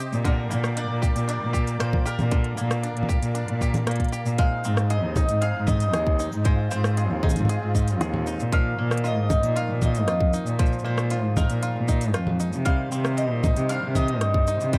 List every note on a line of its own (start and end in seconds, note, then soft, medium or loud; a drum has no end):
0.00 0.24 C4 medium
0.00 0.30 D#4 medium
0.00 1.02 G4 medium
0.00 0.21 C5 medium
0.00 0.21 D#5 medium
0.00 2.28 G5 medium
0.00 4.35 D6 medium
0.12 0.45 A#2 loud
0.12 shaker soft
0.24 2.30 D3 medium
0.24 4.35 A#4 medium
0.24 0.73 A#4 medium
0.24 4.35 D5 medium
0.24 kick loud
0.24 closed hi-hat medium
0.24 shaker soft
0.50 0.84 A#2 medium
0.50 1.78 A#3 medium
0.50 shaker medium
0.64 cross-stick medium
0.64 shaker soft
0.77 1.26 D4 medium
0.77 1.28 D5 loud
0.77 closed hi-hat medium
0.77 shaker soft
0.90 1.08 A#2 medium
1.02 1.52 G4 medium
1.02 kick medium
1.02 shaker medium
1.15 1.33 A#2 medium
1.15 closed hi-hat soft
1.15 shaker soft
1.28 2.82 D4 medium
1.28 1.80 D5 loud
1.28 closed hi-hat medium
1.28 shaker soft
1.41 1.74 A#2 medium
1.53 2.04 G4 medium
1.53 kick medium
1.53 shaker medium
1.67 closed hi-hat soft
1.67 shaker soft
1.80 1.89 A#2 loud
1.80 2.56 A#3 medium
1.80 2.06 C5 loud
1.80 cross-stick medium
1.80 closed hi-hat medium
1.80 shaker soft
1.93 kick loud
1.93 low conga medium
2.06 3.07 G4 medium
2.06 4.09 A#4 medium
2.06 shaker medium
2.19 2.51 A#2 medium
2.19 low conga medium
2.19 shaker soft
2.31 4.38 D3 medium
2.31 4.38 F5 medium
2.31 kick loud
2.31 closed hi-hat medium
2.31 shaker soft
2.44 closed hi-hat soft
2.57 2.90 A#2 loud
2.57 3.85 A#3 medium
2.57 shaker medium
2.71 cross-stick medium
2.71 closed hi-hat soft
2.71 shaker soft
2.83 3.34 D4 medium
2.83 closed hi-hat medium
2.83 shaker soft
2.96 3.14 A#2 medium
2.96 closed hi-hat soft
3.03 low conga medium
3.09 3.60 G4 medium
3.09 kick loud
3.09 shaker medium
3.22 3.40 A#2 medium
3.22 closed hi-hat soft
3.22 shaker soft
3.35 4.44 D4 medium
3.35 closed hi-hat medium
3.35 shaker soft
3.48 3.81 A#2 medium
3.48 closed hi-hat soft
3.61 4.11 G4 medium
3.61 kick medium
3.61 shaker medium
3.74 closed hi-hat soft
3.74 low conga medium
3.74 shaker soft
3.87 3.96 A#2 medium
3.87 4.44 A#3 medium
3.87 cross-stick medium
3.87 closed hi-hat medium
3.87 shaker soft
3.91 closed hi-hat soft
3.96 closed hi-hat soft
4.00 kick medium
4.00 closed hi-hat soft
4.04 closed hi-hat soft
4.08 4.44 G4 medium
4.08 closed hi-hat soft
4.13 shaker medium
4.26 4.35 A#2 medium
4.26 shaker soft
4.37 8.48 G#3 medium
4.37 6.44 G#3 medium
4.37 8.48 C4 medium
4.37 6.43 D#4 medium
4.37 4.92 F5 loud
4.37 kick loud
4.37 closed hi-hat medium
4.37 shaker soft
4.64 5.05 G#2 medium
4.64 6.70 C4 medium
4.64 shaker medium
4.77 cross-stick medium
4.77 shaker soft
4.90 5.41 G#4 medium
4.90 5.44 D#5 medium
4.90 closed hi-hat medium
4.90 shaker soft
5.04 5.22 D#2 medium
5.16 5.68 D#4 medium
5.16 kick loud
5.16 low conga medium
5.16 shaker medium
5.29 5.47 G#2 medium
5.29 closed hi-hat soft
5.29 shaker soft
5.41 5.93 G#4 medium
5.41 5.66 F5 loud
5.41 closed hi-hat medium
5.41 shaker soft
5.55 5.96 G#2 medium
5.67 6.19 D#4 medium
5.67 6.44 D#5 loud
5.67 kick medium
5.67 low conga medium
5.67 shaker medium
5.80 closed hi-hat soft
5.80 shaker soft
5.93 6.26 D#2 medium
5.93 6.96 G#4 medium
5.93 cross-stick medium
5.93 closed hi-hat medium
5.93 shaker soft
6.07 kick loud
6.19 7.23 D#4 medium
6.19 shaker medium
6.32 6.65 G#2 medium
6.32 shaker soft
6.44 8.52 G#3 medium
6.44 8.50 F4 medium
6.44 6.70 C5 medium
6.44 kick loud
6.44 closed hi-hat medium
6.44 shaker soft
6.71 7.12 G#2 medium
6.71 8.58 C4 medium
6.71 7.25 C5 loud
6.71 shaker medium
6.84 cross-stick medium
6.84 shaker soft
6.97 7.48 G#4 medium
6.97 closed hi-hat medium
6.97 shaker soft
7.10 7.28 D#2 medium
7.23 7.75 D#4 medium
7.23 8.23 G#4 medium
7.23 kick loud
7.23 low conga soft
7.27 low conga soft
7.27 shaker medium
7.32 low conga soft
7.36 7.54 G#2 medium
7.36 closed hi-hat soft
7.36 low conga medium
7.36 shaker soft
7.41 low conga medium
7.45 low conga medium
7.49 8.00 G#4 medium
7.49 closed hi-hat medium
7.49 shaker soft
7.61 8.02 G#2 medium
7.75 8.27 D#4 medium
7.75 kick medium
7.75 shaker medium
7.88 closed hi-hat soft
7.88 shaker soft
8.00 8.33 D#2 loud
8.00 8.27 G#4 medium
8.00 cross-stick medium
8.00 closed hi-hat medium
8.00 shaker soft
8.14 low conga medium
8.27 9.03 D#4 medium
8.27 shaker medium
8.39 8.72 A#2 medium
8.39 shaker soft
8.52 14.78 D#3 medium
8.52 12.62 F3 medium
8.52 10.58 F3 medium
8.52 10.57 A#3 medium
8.52 9.01 F5 loud
8.52 kick loud
8.52 closed hi-hat medium
8.52 shaker soft
8.78 9.18 A#2 loud
8.78 10.83 A#3 medium
8.91 cross-stick medium
8.91 shaker soft
8.98 closed hi-hat medium
9.04 9.55 F4 medium
9.04 9.58 D#5 loud
9.04 shaker soft
9.17 9.35 G#2 loud
9.30 9.81 D#4 medium
9.30 kick loud
9.30 low conga medium
9.30 shaker medium
9.43 9.61 A#2 medium
9.43 closed hi-hat soft
9.43 shaker soft
9.56 10.07 F4 medium
9.56 9.83 F5 loud
9.56 closed hi-hat medium
9.56 shaker soft
9.69 10.09 A#2 medium
9.82 10.33 D#4 medium
9.82 10.59 D#5 loud
9.82 kick medium
9.82 low conga medium
9.82 shaker medium
9.95 closed hi-hat soft
9.95 shaker soft
10.07 10.40 F2 loud
10.07 11.10 F4 medium
10.07 cross-stick medium
10.07 closed hi-hat medium
10.07 shaker soft
10.21 kick loud
10.33 11.36 D#4 medium
10.33 shaker medium
10.46 10.79 A#2 medium
10.46 shaker soft
10.59 12.65 F3 medium
10.59 12.64 G#3 medium
10.59 10.84 C5 medium
10.59 kick loud
10.59 closed hi-hat medium
10.59 shaker soft
10.66 shaker soft
10.72 shaker soft
10.79 shaker soft
10.84 11.25 A#2 loud
10.84 12.71 A#3 medium
10.84 11.36 C5 medium
10.98 cross-stick medium
10.98 shaker soft
11.10 11.61 F4 medium
11.10 closed hi-hat medium
11.10 shaker soft
11.24 11.42 G#2 medium
11.37 11.88 D#4 medium
11.37 12.36 A#4 medium
11.37 kick loud
11.37 low conga medium
11.37 shaker medium
11.50 11.68 A#2 medium
11.50 closed hi-hat soft
11.50 shaker soft
11.63 12.13 F4 medium
11.63 closed hi-hat medium
11.63 shaker soft
11.75 12.16 A#2 medium
11.88 12.40 D#4 medium
11.88 kick medium
11.88 shaker medium
12.01 closed hi-hat soft
12.01 shaker soft
12.14 12.47 F2 loud
12.14 12.39 F4 medium
12.14 cross-stick medium
12.14 closed hi-hat medium
12.14 shaker soft
12.27 low conga medium
12.40 13.43 D#4 medium
12.40 shaker medium
12.53 12.86 C3 medium
12.53 shaker soft
12.65 14.78 C3 medium
12.65 14.72 G3 medium
12.65 14.78 G3 medium
12.65 14.78 C5 medium
12.65 13.19 F5 loud
12.65 kick loud
12.65 closed hi-hat medium
12.65 shaker soft
12.92 13.32 C3 loud
12.92 14.78 C4 medium
12.92 shaker medium
13.05 cross-stick medium
13.05 shaker soft
13.17 13.66 D#5 loud
13.17 closed hi-hat medium
13.17 shaker soft
13.31 13.49 A#2 medium
13.43 13.94 D#4 medium
13.43 kick loud
13.43 low conga medium
13.43 shaker medium
13.56 13.75 C3 medium
13.56 closed hi-hat soft
13.56 shaker soft
13.69 14.51 D4 medium
13.69 13.93 F5 loud
13.69 closed hi-hat medium
13.69 shaker soft
13.83 14.23 C3 medium
13.95 14.46 D#4 medium
13.95 14.69 D#5 loud
13.95 kick medium
13.95 low conga medium
13.95 shaker medium
14.08 closed hi-hat soft
14.21 14.54 G2 loud
14.21 cross-stick medium
14.21 closed hi-hat medium
14.21 shaker soft
14.34 kick loud
14.47 14.78 D#4 medium
14.47 shaker medium
14.60 14.78 C3 medium
14.60 shaker soft
14.73 14.78 G3 medium
14.73 14.78 C5 medium
14.73 kick loud
14.73 closed hi-hat medium
14.73 shaker soft